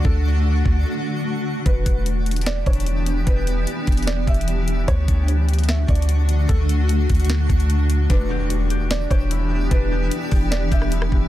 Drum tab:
HH |------------------------------------------------------------------------------------------------|x-----------x-----------x-----------x--x--x--x--x-----------x---x---x---x-----------x-----------|x-----------x-----------x-----------x--x--x--x--x-----------x---x---x---x-----------x-----------|x-----------x-----------x-----------x--x--x--x--x-----------x---x---x---x-----------x-----------|
SD |------------------------------------------------------------------------------------------------|------------------------------------------------o-----------------------------------------------|------------------------------------------------o-----------------------------------------------|------------------------------------------------o-----------------------------------------------|
BD |o-----------------------------------o-----------------------------------------------------------|o-----------o-----------------------------------------------o-----------------------------------|o-----------------------------------o-----------------------o-----------------------------------|o-----------o-----------------------------------------------o-----------------------------------|

HH |x-----------x-----------x-----------x--x--x--x--x-----------x-----x-----x-----------x-----------|x-----------------------x-----------x-----------x-----------x-----------x-----------------------|x-----------------------x-----------o-----------x-----------x-----------x-----------------------|
SD |------------------------------------------------o-----------------------------------------------|------------------------------------------------o-----------------------------------------------|------------------------------------------------o-----------------r-----------r-----------------|
BD |o-----------------------------------o-----------------------o-----------------------------------|o-----------------------------------------------------------o-----------------------------------|o-----------------------------------o-----------------------o-----------------------o-----------|